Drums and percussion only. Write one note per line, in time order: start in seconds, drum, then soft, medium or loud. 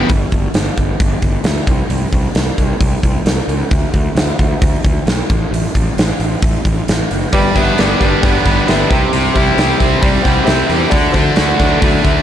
0.09 kick loud
0.09 open hi-hat medium
0.32 kick medium
0.32 open hi-hat soft
0.54 snare loud
0.54 open hi-hat medium
0.78 kick medium
0.78 open hi-hat soft
1.00 kick loud
1.00 open hi-hat medium
1.22 kick medium
1.22 open hi-hat soft
1.44 snare loud
1.44 open hi-hat medium
1.67 kick medium
1.67 open hi-hat soft
1.90 open hi-hat medium
2.13 kick medium
2.13 open hi-hat medium
2.35 snare loud
2.35 open hi-hat medium
2.58 kick medium
2.58 open hi-hat medium
2.81 kick loud
2.81 open hi-hat medium
3.03 kick medium
3.03 open hi-hat soft
3.26 snare medium
3.26 open hi-hat medium
3.49 open hi-hat soft
3.71 kick loud
3.71 open hi-hat medium
3.94 kick medium
3.94 open hi-hat soft
4.17 snare loud
4.17 open hi-hat medium
4.39 kick medium
4.39 open hi-hat soft
4.62 kick loud
4.62 open hi-hat medium
4.85 kick medium
4.85 open hi-hat soft
5.07 snare loud
5.07 open hi-hat medium
5.30 kick loud
5.30 open hi-hat soft
5.54 open hi-hat medium
5.75 kick medium
5.75 open hi-hat medium
5.98 snare loud
5.98 open hi-hat medium
6.20 open hi-hat medium
6.42 kick loud
6.42 open hi-hat medium
6.65 kick medium
6.65 open hi-hat medium
6.88 snare medium
6.88 open hi-hat medium
7.11 open hi-hat medium
7.33 kick loud
7.33 open hi-hat medium
7.56 kick medium
7.56 open hi-hat medium
7.78 snare loud
7.78 open hi-hat medium
8.01 kick medium
8.01 open hi-hat soft
8.23 kick loud
8.23 open hi-hat medium
8.46 kick medium
8.46 open hi-hat soft
8.68 snare loud
8.68 open hi-hat medium
8.91 kick medium
8.91 snare soft
8.91 open hi-hat soft
9.13 open hi-hat medium
9.36 kick medium
9.36 open hi-hat medium
9.58 snare loud
9.58 open hi-hat medium
9.80 kick medium
9.80 open hi-hat medium
10.03 kick loud
10.03 open hi-hat medium
10.25 kick medium
10.25 open hi-hat medium
10.47 snare loud
10.47 open hi-hat medium
10.70 open hi-hat medium
10.91 kick loud
10.91 open hi-hat medium
11.14 kick medium
11.14 open hi-hat medium
11.36 snare loud
11.36 open hi-hat medium
11.59 kick medium
11.59 open hi-hat medium
11.82 kick loud
11.82 open hi-hat medium
12.05 kick medium
12.05 open hi-hat soft